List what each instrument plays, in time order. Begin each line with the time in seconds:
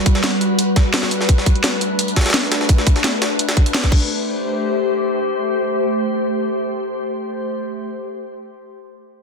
Already playing: ambient pad G3 F#4 B4
0.06 kick, closed hi-hat
0.15 snare, closed hi-hat
0.24 snare, closed hi-hat
0.41 closed hi-hat
0.59 closed hi-hat
0.76 kick, snare, closed hi-hat
0.94 snare, closed hi-hat, open hi-hat
1.03 snare
1.11 closed hi-hat
1.21 snare
1.29 ambient pad A3 D4, kick, closed hi-hat
1.38 snare
1.46 kick, closed hi-hat
1.55 closed hi-hat
1.64 snare, closed hi-hat
1.81 closed hi-hat
1.99 closed hi-hat
2.08 closed hi-hat
2.16 kick, snare, closed hi-hat
2.21 snare, closed hi-hat
2.26 snare, closed hi-hat
2.30 snare, closed hi-hat
2.34 snare, closed hi-hat
2.43 snare
2.52 snare, closed hi-hat
2.61 snare
2.69 kick, closed hi-hat
2.78 snare
2.87 kick, closed hi-hat
2.96 snare, closed hi-hat
3.04 snare, closed hi-hat
3.22 snare, closed hi-hat
3.39 closed hi-hat
3.49 snare, closed hi-hat
3.57 kick, closed hi-hat
3.66 closed hi-hat
3.74 snare, closed hi-hat, open hi-hat
3.84 kick, snare, closed hi-hat
3.92 ambient pad A3 G4 C5, kick, crash